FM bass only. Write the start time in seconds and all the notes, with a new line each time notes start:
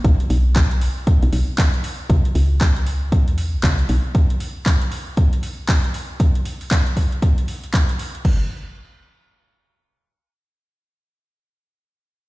0.04 B1
0.30 B1
1.23 B1
1.33 B1
2.10 C#2
2.35 C#2
3.12 E2
3.53 B1
3.63 C#2
3.89 B1